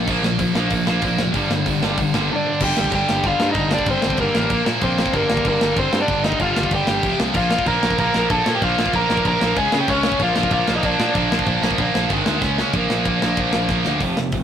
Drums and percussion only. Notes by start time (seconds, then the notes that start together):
0.08 kick, crash
0.24 snare
0.39 kick, open hi-hat
0.55 snare
0.70 kick, open hi-hat
0.87 snare
1.02 kick, open hi-hat
1.19 snare
1.34 kick, open hi-hat
1.51 snare
1.66 kick, open hi-hat
1.83 snare
1.98 kick, open hi-hat
2.14 snare
2.60 kick, crash
2.77 snare
2.84 kick
2.92 kick, crash
3.09 snare
3.24 kick, crash
3.40 snare
3.54 kick, crash
3.71 snare
3.79 kick
3.86 kick, crash
4.02 snare
4.10 kick
4.17 kick, crash
4.35 snare
4.50 kick, crash
4.66 snare
4.81 kick, crash
4.98 snare
5.06 kick
5.13 kick, crash
5.30 snare
5.37 kick
5.45 kick, crash
5.61 snare
5.76 kick, crash
5.93 snare
6.08 kick, crash
6.24 snare
6.32 kick
6.40 kick, crash
6.56 snare
6.63 kick
6.71 kick, crash
6.87 snare
7.03 kick, crash
7.20 snare
7.34 kick, crash
7.51 snare
7.59 kick
7.66 kick, crash
7.83 snare
7.90 kick
7.98 kick, crash
8.14 snare
8.30 kick, crash
8.46 snare
8.62 kick, crash
8.79 snare
8.86 kick
8.93 kick, crash
9.10 snare
9.17 kick
9.25 kick, crash
9.41 snare
9.56 kick, crash
9.72 snare
9.88 kick, crash
10.03 snare
10.12 kick
10.20 kick, crash
10.36 snare
10.43 kick
10.50 kick, crash
10.68 snare
10.83 kick, crash
11.00 snare
11.15 kick, crash
11.32 snare
11.39 kick
11.46 kick, crash
11.63 snare
11.71 kick
11.78 kick, crash
11.95 snare
12.10 kick, crash
12.26 snare
12.42 kick, snare
12.58 snare
12.73 kick, ride
12.90 snare
13.05 kick, ride
13.22 snare
13.37 kick, ride
13.53 snare
13.69 kick, snare
13.85 snare
14.00 kick, open hi-hat
14.17 snare
14.32 kick, open hi-hat